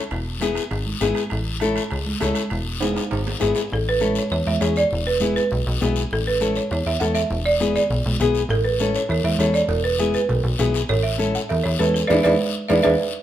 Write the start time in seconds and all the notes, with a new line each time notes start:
0.11 E1, high timbale, long guiro
0.40 B3 E4 G#4, high conga, high timbale, short guiro
0.55 high timbale, short guiro
0.71 G#1, high timbale, long guiro
0.86 high conga
1.01 G#1 B3 E4 G#4, high conga, high timbale, short guiro
1.15 high timbale, short guiro
1.30 A1, high timbale, long guiro
1.60 C#4 E4 A4, high conga, high timbale, short guiro
1.76 high timbale, short guiro
1.90 C#2, high timbale, long guiro
2.06 high conga
2.20 C#2 C#4 E4 A4, high conga, high timbale, low timbale, short guiro
2.35 high timbale, short guiro
2.50 E1, high timbale, long guiro
2.81 B3 E4 G#4, high conga, high timbale, short guiro
2.96 high timbale, short guiro
3.11 G#1, high timbale, long guiro
3.27 low timbale
3.40 G#1 B3 E4 G#4, high conga, low timbale, short guiro
3.55 low timbale, short guiro
3.70 A1 A4, long guiro
3.89 B4
4.00 C#4 E4 A4, high conga, short guiro
4.15 C#5, short guiro
4.30 E2 C#5, long guiro
4.46 E2 E5, high conga
4.61 E2 C#4 E4 G#4 C#5, high conga, short guiro
4.76 D5, short guiro
4.91 E1, long guiro
5.07 B4
5.20 B3 E4 G#4, high conga, short guiro
5.36 B4, short guiro
5.51 B1, long guiro
5.67 B1
5.81 B1 B3 E4 G#4, high conga, low conga, short guiro
5.96 short guiro
6.11 A1 A4, long guiro
6.27 B4
6.40 C#4 E4 A4, high conga, short guiro
6.55 C#5, short guiro
6.71 E2 C#5, long guiro
6.86 E2 E5
7.00 E2 C#4 E4 A4 F#5, high conga, short guiro
7.15 E5, short guiro
7.30 E1, long guiro
7.46 D5
7.60 B3 E4 G#4, high conga, short guiro
7.76 D5, low conga, short guiro
7.90 B1, long guiro
8.06 B1, high conga
8.20 B1 B3 E4 G#4, high conga, low conga, short guiro
8.35 short guiro
8.49 A1 A4, cowbell, long guiro
8.64 B4
8.80 C#4 E4 A4, high conga, short guiro
8.95 C#5, short guiro
9.09 E2 C#5, cowbell, long guiro
9.24 E2 E5, high conga
9.39 E2 C#4 E4 A4 C#5, high conga, low timbale, short guiro
9.54 D5, short guiro
9.68 E1, cowbell, long guiro
9.84 B4
9.99 B3 E4 G#4, high conga, short guiro
10.14 B4, short guiro
10.29 B1, cowbell, long guiro
10.44 B1
10.59 B1 B3 E4 G#4, high conga, low conga, low timbale, short guiro
10.74 short guiro
10.89 A1 C#5, cowbell, long guiro
11.03 E5
11.18 C#4 E4 A4, high conga, short guiro
11.35 F#5, short guiro
11.49 E2 E5, cowbell, long guiro
11.64 E2 C#5
11.79 E2 C#4 E4 A4 B4, high conga, low timbale, short guiro
11.94 A4, short guiro
12.07 E2 D4 E4 G#4 B4 D5 E5, high conga, high timbale, long guiro
12.23 E2 D4 E4 G#4 B4 D5 E5, high conga, high timbale, long guiro
12.69 E2 D4 E4 G#4 B4 D5 E5, high conga, high timbale, long guiro
12.83 E2 D4 E4 G#4 B4 D5 E5, high conga, high timbale, long guiro